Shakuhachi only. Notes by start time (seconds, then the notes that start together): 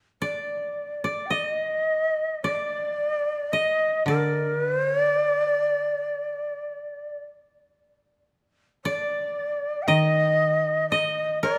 0.22 D5
1.26 G5
1.32 D5
1.48 D#5
2.42 D5
3.52 D#5
4.07 A#4
4.55 B4
4.73 C5
4.91 C#5
5.09 D5
8.85 D5
9.82 G5
9.87 D#5
10.90 D#5
11.43 D5